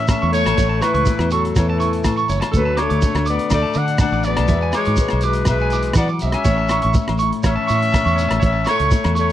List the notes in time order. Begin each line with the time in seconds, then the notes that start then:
Already playing: A2 E3 C#4 E4
0.08 A3 C#4 E5 A5, kick, cross-stick, closed hi-hat, low agogo, shekere
0.22 E2 C#6, shekere
0.32 A3 E4 C#5, closed hi-hat, shekere
0.46 A1 A5, cross-stick, closed hi-hat, low agogo, shekere
0.57 A1 A2 E4 C#5, kick, closed hi-hat, shekere
0.69 A5
0.81 E3 B4 C#6, cross-stick, closed hi-hat, low agogo, shekere
0.86 E4
0.94 C#2 C#6, closed hi-hat
1.06 A3 E4, kick, closed hi-hat, shekere
1.19 E2, cross-stick, low agogo
1.31 F#3 E4 A4 C#6, closed hi-hat, shekere
1.45 closed hi-hat
1.56 E2 E3 A4 C#5, kick, cross-stick, closed hi-hat, low agogo, shekere
1.70 A5
1.80 C#4 C#6, closed hi-hat, shekere
1.93 closed hi-hat
2.04 A2 A5, muted nylon-string guitar stroke, kick, cross-stick, closed hi-hat, low agogo, shekere
2.17 C#6, shekere
2.29 F#1 E4 C#5, closed hi-hat, shekere
2.41 A5, cross-stick, closed hi-hat, low agogo, shekere
2.52 D2 D3 A4, kick, closed hi-hat, shekere
2.56 F#3 A3 D4 A4 B4, muted nylon-string guitar stroke
2.65 A5
2.77 C#5 D6, cross-stick, closed hi-hat, low agogo
2.81 A3 F#4
2.90 D2 D6, closed hi-hat
3.02 A3, kick, closed hi-hat, shekere
3.06 A4
3.15 D2, cross-stick, low agogo
3.26 B3 F#4 D5 D6, closed hi-hat, shekere
3.39 closed hi-hat
3.50 D2 A2 A3 D5, kick, cross-stick, closed hi-hat, low agogo, shekere
3.62 A5
3.74 D3 D4 F#5 D6, closed hi-hat, shekere
3.88 closed hi-hat
3.98 A3 F#5 A5, kick, cross-stick, closed hi-hat, low agogo, shekere
4.03 D4
4.12 A1 D6, shekere
4.24 F#4 D5, closed hi-hat, shekere
4.28 B3
4.36 B1 A5, cross-stick, closed hi-hat, low agogo, shekere
4.48 E2 E3 G#3 E5, kick, closed hi-hat, shekere
4.52 E4 F#4 B4
4.61 G#5, shekere
4.73 F#4 C#5 D6, cross-stick, closed hi-hat, low agogo, shekere
4.77 G#3
4.85 G#2 D6, closed hi-hat, shekere
4.96 G#3, kick, closed hi-hat, shekere
5.01 B4
5.09 cross-stick, low agogo, shekere
5.13 B1
5.21 F#4 B4 D6, closed hi-hat, shekere
5.26 G#3
5.33 closed hi-hat, shekere
5.45 B1 B2 B4 E5, kick, cross-stick, closed hi-hat, low agogo, shekere
5.50 G#3
5.60 G#5, shekere
5.70 E4 D6, closed hi-hat, shekere
5.83 closed hi-hat, shekere
5.93 E3 F#5, kick, cross-stick, closed hi-hat, low agogo, shekere
5.98 F#3 B3 D5
6.08 D6, shekere
6.19 B1 G#3 E5, closed hi-hat, shekere
6.24 C#4
6.32 G#5, cross-stick, closed hi-hat, low agogo
6.44 A1 A2 C#5, kick, closed hi-hat, shekere
6.58 A5
6.68 E4 C#6, cross-stick, closed hi-hat, low agogo, shekere
6.82 A1 C#6, closed hi-hat
6.94 A3 C#5, kick, closed hi-hat, shekere
7.08 A1, cross-stick, low agogo
7.18 E4 C#6, closed hi-hat, shekere
7.33 closed hi-hat
7.43 A1 E3 C#4 C#5 E5, kick, cross-stick, closed hi-hat, low agogo, shekere
7.56 A5
7.67 A2 C#6, closed hi-hat, shekere
7.71 C#4
7.82 closed hi-hat
7.92 A3 A5, kick, cross-stick, closed hi-hat, low agogo, shekere
8.05 E2 C#6, shekere
8.16 C#5, closed hi-hat, shekere
8.21 E4
8.29 A1 A5, cross-stick, closed hi-hat, low agogo, shekere
8.40 A1 C#5, kick, closed hi-hat, shekere
8.44 A2 C#4 C#5 E5
8.53 A5
8.65 E4 C#5 C#6, cross-stick, closed hi-hat, low agogo, shekere
8.71 A3
8.78 C#2 C#6, closed hi-hat
8.91 A3 E4, kick, closed hi-hat, shekere
9.04 E2, cross-stick, low agogo
9.15 A3 C#6, muted nylon-string guitar stroke, closed hi-hat, shekere
9.20 C#5